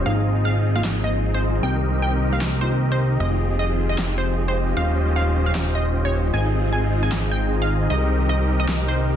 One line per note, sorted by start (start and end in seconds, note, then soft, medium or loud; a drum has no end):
0.00 1.60 F4 medium
0.00 3.16 C5 medium
0.04 1.61 G#1 medium
0.04 3.16 D#3 medium
0.04 0.72 F3 medium
0.04 1.61 G#3 medium
0.04 0.72 A#3 medium
0.04 1.61 C4 medium
0.04 0.73 C4 medium
0.04 1.61 D#4 medium
0.04 0.73 D#4 medium
0.04 1.61 F4 medium
0.04 1.61 G#4 medium
0.04 0.74 G#4 loud
0.04 1.61 D#5 medium
0.04 0.36 F5 medium
0.45 0.67 F5 medium
0.74 1.01 F3 medium
0.74 1.02 A#3 medium
0.74 1.02 C4 medium
0.74 1.02 D#4 medium
0.74 1.02 F4 loud
0.74 0.97 F5 medium
0.84 snare loud
0.84 clap medium
1.02 1.60 F3 medium
1.02 1.60 A#3 medium
1.02 1.61 C4 medium
1.02 1.61 D#4 medium
1.02 1.62 C5 loud
1.02 1.26 D#5 loud
1.34 1.56 C5 loud
1.61 3.18 C2 medium
1.61 2.29 G3 medium
1.61 2.29 A#3 medium
1.61 3.18 A#3 medium
1.61 3.18 C4 medium
1.61 2.30 C4 medium
1.61 3.18 D#4 medium
1.61 2.30 D#4 medium
1.61 3.18 G4 medium
1.61 3.18 G4 loud
1.61 2.31 G4 medium
1.61 3.18 A#4 medium
1.61 3.18 D#5 medium
1.61 1.93 G5 loud
2.02 2.25 G5 medium
2.31 2.59 G3 medium
2.31 2.59 A#3 medium
2.31 2.59 C4 medium
2.31 2.60 D#4 medium
2.31 2.60 G4 loud
2.31 2.54 F5 medium
2.41 snare loud
2.41 clap medium
2.60 2.69 G3 medium
2.60 2.69 A#3 medium
2.60 2.69 C4 medium
2.60 2.69 D#4 medium
2.60 2.70 F4 loud
2.60 2.83 C5 loud
2.70 3.17 G3 medium
2.70 3.17 A#3 medium
2.70 3.18 C4 medium
2.70 3.18 D#4 medium
2.70 3.19 G4 loud
2.92 3.13 C5 medium
3.20 4.75 F1 medium
3.20 4.75 F3 medium
3.20 4.75 G#3 medium
3.20 4.75 C4 medium
3.20 4.75 D#4 medium
3.20 3.30 D#4 medium
3.20 4.75 F4 medium
3.20 4.75 G4 medium
3.20 4.75 G#4 medium
3.20 4.75 D#5 medium
3.20 3.50 D#5 medium
3.20 4.75 G5 medium
3.31 3.98 D#4 medium
3.40 3.56 G4 medium
3.50 3.59 G#4 medium
3.59 3.96 G#4 medium
3.59 3.81 D#5 loud
3.70 3.79 C5 medium
3.79 4.48 C5 medium
3.89 4.17 G4 medium
3.89 4.11 D#5 medium
3.98 4.09 D#4 medium
3.98 snare loud
3.98 clap medium
4.09 4.76 D#4 loud
4.18 4.34 G4 medium
4.18 4.40 C5 medium
4.28 4.37 G#4 medium
4.38 4.74 G#4 medium
4.48 4.57 C5 medium
4.48 4.70 C5 medium
4.57 5.26 C5 medium
4.68 4.96 G4 medium
4.77 6.32 D#1 medium
4.77 6.32 C#3 medium
4.77 6.32 G3 medium
4.77 6.31 C#4 medium
4.77 4.87 D#4 medium
4.77 7.87 F4 loud
4.77 6.31 F4 medium
4.77 6.31 G4 medium
4.77 6.32 C5 medium
4.77 6.31 C5 medium
4.77 6.31 D#5 medium
4.77 5.07 F5 medium
4.87 5.55 D#4 loud
4.96 5.46 G4 medium
5.07 5.16 A#4 medium
5.16 5.85 A#4 medium
5.16 5.38 F5 medium
5.27 5.35 C5 medium
5.35 6.05 C5 loud
5.46 5.75 G4 medium
5.46 5.68 F5 medium
5.55 5.65 D#4 medium
5.55 snare loud
5.55 clap medium
5.66 6.33 D#4 medium
5.75 6.24 G4 medium
5.75 5.97 D#5 medium
5.85 5.94 A#4 medium
5.95 8.07 A#4 medium
6.05 6.14 C5 medium
6.05 6.27 C#5 medium
6.14 6.64 C5 medium
6.25 6.59 G4 medium
6.33 7.89 G#1 medium
6.33 7.89 D#3 medium
6.33 7.89 G#3 medium
6.33 7.89 C4 medium
6.33 7.88 C4 medium
6.33 7.88 D#4 medium
6.33 6.44 D#4 medium
6.33 7.88 F4 medium
6.33 7.88 G#4 medium
6.33 7.88 D#5 medium
6.33 6.64 G#5 loud
6.44 7.11 D#4 medium
6.53 7.03 G#4 medium
6.64 6.72 C5 medium
6.73 7.42 C5 medium
6.73 6.95 G#5 medium
6.83 6.92 D#5 medium
6.92 7.61 D#5 medium
7.03 7.31 G#4 medium
7.03 7.25 G#5 medium
7.12 snare loud
7.12 clap medium
7.22 7.90 D#4 loud
7.31 7.81 G#4 medium
7.31 7.54 G5 medium
7.42 7.51 C5 medium
7.51 8.20 C5 medium
7.62 7.70 D#5 medium
7.62 7.84 F5 loud
7.71 8.40 D#5 medium
7.81 9.16 G#4 medium
7.90 9.16 C2 medium
7.90 9.16 D#3 medium
7.90 9.16 A#3 medium
7.90 9.16 C4 medium
7.90 8.01 D#4 medium
7.90 9.16 D#4 medium
7.90 9.16 G4 medium
7.90 9.16 A#4 medium
7.90 8.20 D#5 loud
7.90 9.16 D#5 medium
8.01 8.69 D#4 loud
8.10 8.60 A#4 medium
8.21 8.29 C5 medium
8.29 9.16 C5 medium
8.29 8.52 D#5 medium
8.40 8.49 D#5 medium
8.49 9.16 D#5 loud
8.60 8.88 A#4 medium
8.60 8.82 D#5 medium
8.69 8.79 D#4 medium
8.69 snare loud
8.69 clap medium
8.80 8.99 D#4 medium
8.88 9.16 A#4 medium
8.88 9.11 C5 loud
8.99 9.08 D#4 medium
9.08 9.16 D#4 medium